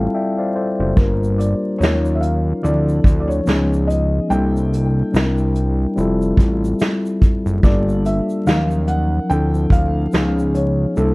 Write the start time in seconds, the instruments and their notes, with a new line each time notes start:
Already playing: tine electric piano G3 C4 E4 F4 A4 F5 G5 A5
0.15 tine electric piano D5 E5 G5
0.39 tine electric piano C5 D5 F5
0.56 tine electric piano A4 C5 D5
0.79 analog synth bass F#1, tine electric piano G4 C5
0.95 analog synth bass G1, tine electric piano G3 A#3 D4 F4, felt piano A#4, kick, shaker
0.99 tine electric piano A#4
1.24 shaker
1.38 felt piano D5, closed hi-hat, shaker
1.78 analog synth bass D#2, tine electric piano F#3 C#4 D#4, felt piano C#5, shaker
1.83 tine electric piano F4 A#4, snare
2.05 shaker
2.15 felt piano E5
2.21 felt piano F5, closed hi-hat, shaker
2.62 analog synth bass D2, tine electric piano E3 C4 D4 E4, felt piano D5, shaker
2.67 tine electric piano F3 A4
2.89 shaker
3.04 analog synth bass D2, kick, closed hi-hat, shaker
3.20 felt piano D5
3.28 felt piano C#5, shaker
3.45 analog synth bass C#2, tine electric piano F3 B3 C#4 D#4 G#4, snare, shaker
3.73 shaker
3.87 felt piano D#5, closed hi-hat, shaker
4.28 analog synth bass C2, tine electric piano G3 A#3 D4 E4, felt piano G5, shaker
4.33 tine electric piano A4
4.56 shaker
4.73 closed hi-hat, shaker
5.12 analog synth bass C2, tine electric piano G3 C4 D4 E4, shaker
5.16 tine electric piano A#4, snare
5.38 shaker
5.56 closed hi-hat, shaker
5.96 analog synth bass F1, tine electric piano G3 C4 E4 F4, shaker
6.00 tine electric piano A4
6.22 shaker
6.37 analog synth bass A1, kick, closed hi-hat, shaker
6.64 shaker
6.80 snare, shaker
7.06 shaker
7.22 kick, closed hi-hat, shaker
7.46 analog synth bass F#1, shaker
7.62 analog synth bass G1, tine electric piano G3 A#3 D4 F4, felt piano D5, kick, shaker
7.67 tine electric piano A4
7.89 shaker
8.06 felt piano E5, closed hi-hat, shaker
8.29 shaker
8.45 analog synth bass D#2, tine electric piano F3 F#3 C#4 D#4, felt piano F5, snare, shaker
8.50 tine electric piano A#4
8.71 shaker
8.88 felt piano F#5, closed hi-hat, shaker
9.29 analog synth bass D2, tine electric piano F3 C4 D4 E4, felt piano G5, shaker
9.33 tine electric piano A4
9.54 shaker
9.70 analog synth bass D2, felt piano F5, kick, closed hi-hat, shaker
10.12 analog synth bass C#2, tine electric piano F3 B3 C#4 D#4, snare, shaker
10.17 tine electric piano G#4
10.39 shaker
10.55 felt piano C#5, closed hi-hat, shaker
10.96 analog synth bass C2, tine electric piano G3 A#3 D4 E4, felt piano A4, shaker
11.00 tine electric piano A4